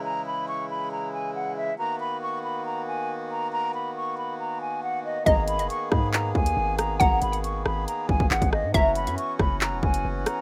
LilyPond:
<<
  \new Staff \with { instrumentName = "Flute" } { \time 4/4 \key gis \minor \tempo 4 = 138 ais''8 b''8 cis'''8 b''8 ais''8 gis''8 fis''8 e''8 | ais''8 b''8 cis'''8 b''8 ais''8 gis''4 ais''8 | ais''8 b''8 cis'''8 b''8 ais''8 gis''8 fis''8 dis''8 | ais''8 b''8 cis'''8 b''8 ais''8 gis''4 ais''8 |
ais''8 b''8 cis'''8 b''8 ais''8 gis''8 fis''8 dis''8 | ais''8 b''8 cis'''8 b''8 ais''8 gis''4 ais''8 | }
  \new Staff \with { instrumentName = "Synth pluck" } { \time 4/4 \key gis \minor r1 | r1 | r1 | dis''4 r2. |
fis''4 r2. | e''4 r2. | }
  \new Staff \with { instrumentName = "Accordion" } { \time 4/4 \key gis \minor e'1 | fis'1~ | fis'1 | gis'1~ |
gis'1 | fis'1 | }
  \new Staff \with { instrumentName = "Accordion" } { \clef bass \time 4/4 \key gis \minor <cis e gis>1 | <dis ais b>1~ | <dis ais b>1~ | <dis ais b>1~ |
<dis ais b>1 | <e cis'>1 | }
  \new Staff \with { instrumentName = "808-style bass" } { \clef bass \time 4/4 \key gis \minor r1 | r1 | r1 | gis,,8. fis,,16 r8 gis,4 dis,8 gis,,4 |
gis,,8 gis,,4 gis,,8 r8 gis,,16 gis,,16 gis,,16 gis,,8 gis,16 | fis,,8. fis,16 r8 fis,,8. e,,16 fis,,8 fis,,8 r8 | }
  \new DrumStaff \with { instrumentName = "Drums" } \drummode { \time 4/4 r4 r4 r4 r4 | r4 r4 r4 r4 | r4 r4 r4 r4 | <hh bd>8 hh16 hh16 hh8 <bd ss>8 <hc hh>8 bd16 hh16 r8 <hh ss>8 |
<hh bd>8 hh16 hh16 hh8 ss8 hh8 bd16 bd16 hc16 <hh bd>16 ss8 | <hh bd>8 hh16 hh16 hh8 <bd ss>8 <hc hh>8 bd16 hh16 r8 <hh ss>8 | }
>>